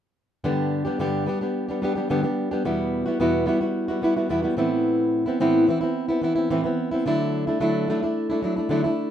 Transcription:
0.44 G2 D3 G3 B3 D4 G4
0.85 G3 B3 D4 G4
0.99 G2 D3 G3 B3 D4 G4
1.26 G3 B3 D4 G4
1.41 G3 B3 D4 G4
1.68 G3 B3 D4 G4
1.82 G3 B3 D4 G4
1.95 G3 B3 D4 G4
2.09 G2 D3 G3 B3 D4 G4
2.23 G3 B3 D4 G4
2.51 G3 B3 D4 G4
2.65 E2 B2 G3 B3 E4 F#4
3.06 G3 B3 E4 F#4
3.20 E2 B2 G3 B3 E4 F#4
3.46 G3 B3 E4 F#4
3.61 G3 B3 E4 F#4
3.88 G3 B3 E4 F#4
4.02 G3 B3 E4 F#4
4.16 G3 B3 E4 F#4
4.29 E2 B2 G3 B3 E4 F#4
4.42 G3 B3 E4 F#4
4.57 A2 E3 B3 C4 E4
5.26 B3 C4 E4
5.40 A2 E3 B3 C4 E4
5.67 E3 B3 C4 E4
5.81 B3 C4 E4
6.08 B3 C4 E4
6.22 E3 B3 C4 E4
6.36 B3 C4 E4
6.50 A2 E3 B3 C4 E4
6.64 B3 C4 E4
6.91 B3 C4 E4
7.06 D3 F#3 A3 D4 E4
7.47 A3 D4 E4
7.60 D3 F#3 A3 D4 E4
7.88 F#3 A3 D4 E4
8.03 A3 D4 E4
8.30 A3 D4 E4
8.42 F#3 A3 D4 E4
8.56 A3 D4 E4
8.69 D3 F#3 A3 D4 E4
8.84 A3 D4 E4

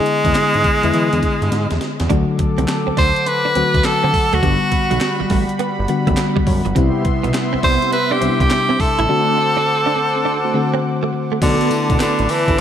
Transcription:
Already playing: D3 G#3 B3 E4
0.06 closed hi-hat
0.25 E2 D3 G#3 B3 E4, kick, closed hi-hat
0.35 G#2, snare, clap, closed hi-hat
0.54 G#2, closed hi-hat
0.64 kick, closed hi-hat
0.83 E2 D3 G#3 B3 D4 E4 G#4, closed hi-hat
0.94 E3, closed hi-hat
1.12 E2 B3 D4 E4 G#4, closed hi-hat
1.22 kick, closed hi-hat
1.42 G2, closed hi-hat
1.52 G#2, snare, closed hi-hat
1.71 E2, snare, closed hi-hat
1.81 snare, closed hi-hat
2.00 E2, snare, closed hi-hat
2.10 D2 D3 F#3 A3 D4 F#4 A4 F#5 D6, kick, closed hi-hat
2.39 muted clean electric guitar stroke, kick, closed hi-hat
2.58 C2 C4, closed hi-hat
2.68 muted clean electric guitar stroke, snare, clap, closed hi-hat
2.87 D2 C4
2.97 D2 D4 C5, kick, open hi-hat
3.16 closed hi-hat
3.26 B4, muted clean electric guitar stroke, closed hi-hat
3.45 D4
3.55 D2 D3 F#3 A3 C4 F#4, closed hi-hat
3.74 D2, kick, closed hi-hat
3.84 A4, snare, clap, closed hi-hat
4.03 D3 C4
4.14 muted clean electric guitar stroke, kick, open hi-hat
4.33 D2 A3 F#4, closed hi-hat
4.42 G1 D3 G3 B3 F#4 B5, kick, closed hi-hat
4.72 muted clean electric guitar stroke, kick, closed hi-hat
4.91 B1 F#3, closed hi-hat
5.01 muted clean electric guitar stroke, snare, clap, closed hi-hat
5.20 A1 F#3
5.30 A1 G3, kick, open hi-hat
5.49 closed hi-hat
5.59 B3, closed hi-hat
5.79 G1
5.88 D3 G3 B3 F#4, muted clean electric guitar stroke, closed hi-hat
6.07 F#1 A3, kick, closed hi-hat
6.17 snare, clap, closed hi-hat
6.36 G3, kick
6.46 F#2, muted clean electric guitar stroke, kick, open hi-hat
6.65 G1 F#3, closed hi-hat
6.75 C2 C3 G3 B3 C4 E4 G4 E5 C6, kick, closed hi-hat
7.05 muted clean electric guitar stroke, kick, closed hi-hat
7.23 B1 B3, closed hi-hat
7.34 muted clean electric guitar stroke, snare, clap, closed hi-hat
7.53 C2 C4
7.63 C2 D4 C5, kick, open hi-hat
7.82 B3 C4 E4 G4, closed hi-hat
7.92 B4, muted clean electric guitar stroke, closed hi-hat
8.11 B3 C4 D4 E4 G4
8.21 C2 C3 G3 B3 C4 D4, closed hi-hat
8.29 E4
8.40 C2 G4, kick, closed hi-hat
8.50 snare, clap, closed hi-hat
8.69 C3 C4
8.79 A4, muted clean electric guitar stroke, kick, open hi-hat
8.99 A1 E4, closed hi-hat
9.08 D3 A3 C4 D4 F#4 C5 F#5 D6
9.38 muted clean electric guitar stroke
9.57 D4
9.67 muted clean electric guitar stroke
9.86 D4
9.96 C4
10.15 A3 C4 D4 F#4
10.25 D4
10.44 A3 C4 D4 F#4
10.54 D3 A3 C4 F#4, muted clean electric guitar stroke
10.74 C4
11.03 A3
11.13 muted clean electric guitar stroke
11.32 A3
11.41 B1 D3 A3 B3 D4 F#4 A4 B4 A5 D6, kick, closed hi-hat, crash, tambourine
11.61 closed hi-hat
11.71 D3 A3 B3 E4, closed hi-hat, tambourine
11.90 B1, kick, closed hi-hat
12.00 A1 D3, snare, clap, closed hi-hat, tambourine
12.19 A1, closed hi-hat
12.29 E3, open hi-hat, tambourine
12.48 A1 B3 D4 F#4 A4, kick, closed hi-hat

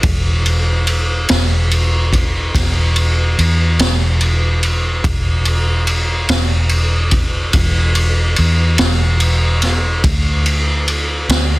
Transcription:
0.03 E1, kick, ride
0.46 ride
0.87 ride
1.29 E1, snare, ride
1.71 ride
2.13 kick, ride
2.55 E1, kick, snare, ride
2.96 ride
3.38 E2, ride
3.79 E1, snare, ride
4.21 ride
4.63 ride
5.04 E1, kick, ride
5.45 ride
5.87 ride
6.29 E1, snare, ride
6.69 ride
7.11 kick, ride
7.53 E1, kick, ride
7.95 ride
8.36 E2, ride
8.78 E1, snare, ride
9.20 ride
9.62 snare, ride
10.04 D2, kick, ride
10.46 ride
10.88 ride
11.29 D2, snare, ride

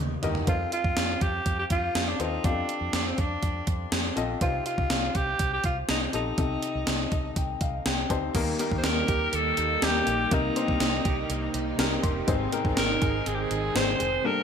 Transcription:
Already playing: D#3 D#4 G4 A#4 D#5
0.00 D#2
0.22 D#2 D#4 G4 A#4 D#5, closed hi-hat, floor tom
0.35 floor tom
0.47 F2 C4 F4 A4 C5, kick, closed hi-hat
0.72 F4, closed hi-hat
0.84 F2, kick
0.97 F2, snare, closed hi-hat
1.21 F2 G4, kick, closed hi-hat
1.46 F2, kick, closed hi-hat
1.59 G4
1.70 F2 F4, kick, closed hi-hat
1.95 F2, snare, closed hi-hat
2.08 D4
2.19 D#2 C4 D#4 F4 A4 C5, closed hi-hat
2.44 F2 C4 D4 F4 G4 F5, kick, closed hi-hat
2.51 A4
2.69 closed hi-hat
2.81 F2
2.93 F2 D4, snare, closed hi-hat
3.07 C4
3.18 F2 D4, kick, closed hi-hat
3.43 F2, kick, closed hi-hat
3.67 F2, kick, closed hi-hat
3.92 F2, snare, closed hi-hat
4.16 A#1 C4 F4 A4 D#5, closed hi-hat
4.41 C2 C3 C4 D#4 F4 G4 C5, kick, closed hi-hat
4.66 F4, closed hi-hat
4.78 C2, kick
4.90 C2, snare, closed hi-hat
5.15 C2 G4, kick, closed hi-hat
5.39 C2, kick, closed hi-hat
5.53 G4
5.64 C2 F4, kick, closed hi-hat
5.89 C2 D#4, snare, closed hi-hat
6.13 A#1 C4 D#4 G4 A4, closed hi-hat
6.38 C2 C3 C4 D#4 G4 A4, kick, closed hi-hat
6.62 closed hi-hat
6.75 C2
6.87 C2, snare, closed hi-hat
7.12 C2 D#5, kick, closed hi-hat
7.36 C2 G5, kick, closed hi-hat
7.61 C2 F5, kick, closed hi-hat
7.85 C2 G5, snare, closed hi-hat
8.09 D2 C4 D#4 G4 C5 A5, kick, closed hi-hat
8.35 D#2 D#3 G3 A#3 D#4 G4 A#4, kick, closed hi-hat, crash
8.59 A#3 D#4 G4 A#4, closed hi-hat
8.72 D#2, kick
8.78 C5
8.84 D#2 D#4 A#4, snare, closed hi-hat
9.08 D#2 G4, kick, closed hi-hat
9.33 D#2 A#3 A4, closed hi-hat
9.57 D#2 D#4, closed hi-hat
9.82 D#2 A#3 D#4 G4 A#4, snare, closed hi-hat
10.07 A#1 G4, closed hi-hat
10.31 C2 C3 A#3 C4 D#4 G4 A#4, kick, closed hi-hat
10.56 A#3 C4 D4 G4 C5, closed hi-hat
10.62 D#4
10.68 C2, kick
10.80 C2 D#4, snare, closed hi-hat
11.05 C2 G4, kick, closed hi-hat
11.30 C2 A#3, closed hi-hat
11.54 C2 D#4, closed hi-hat
11.78 C2 A#3 C4 D#4 G4 A#4 G5, snare, closed hi-hat
12.03 F1 G4 C6, kick, closed hi-hat
12.27 G#1 G#2 D#3 G#3 C4 D#4 G#4 C5, kick, closed hi-hat
12.52 C4 D#4 G#4 A#4, closed hi-hat
12.65 G#1, kick
12.77 G#1 D#4 A#4, snare, closed hi-hat
13.02 G#1 G#4, kick, closed hi-hat
13.26 G#1 C4 G#4, closed hi-hat
13.34 G4
13.41 G#4
13.51 G#1 D#4, closed hi-hat
13.75 G#1 C4 D#4 G#4 C5, snare, closed hi-hat
14.00 F1 G#4, closed hi-hat
14.24 G2 D3 G3 A#3 D4 G4 A4 A#4

